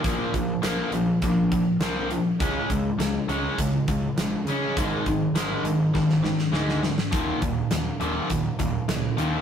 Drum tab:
HH |x-x-x-x-x-x-x-x-|x-x-x-x-x-x-x-x-|x-x-x-x---------|x-x-x-x-x-x-x-x-|
SD |----o-------o---|----o-------o---|----o---oooooooo|----o-------o---|
BD |o-o-----o-o-----|o-o-----o-o-----|o-o-----o-------|o-o-----o-o-----|